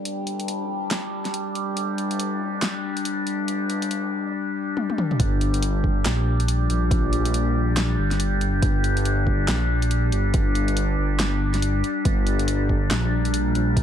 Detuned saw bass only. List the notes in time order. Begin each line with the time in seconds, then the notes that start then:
0.05 G1
0.91 G1
1.55 F1
1.76 G1
2.36 F#1
3.05 G1
3.48 G1
4.08 F#1
5.20 G1
6.05 A#1
6.70 A#1
7.98 G1
8.62 G1
9.48 A#1
10.12 G1
10.98 G1
12.05 G1
12.91 A#1
13.55 A#1